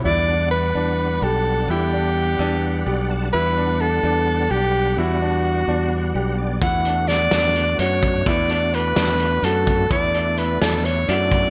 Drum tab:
HH |-------|-------|-------|-------|
SD |-------|-------|-------|-------|
BD |-------|-------|-------|-------|

HH |xxxxxxx|xxxxxxx|xxxxxxx|
SD |--oo---|---o---|---o---|
BD |o-----o|o-----o|o-----o|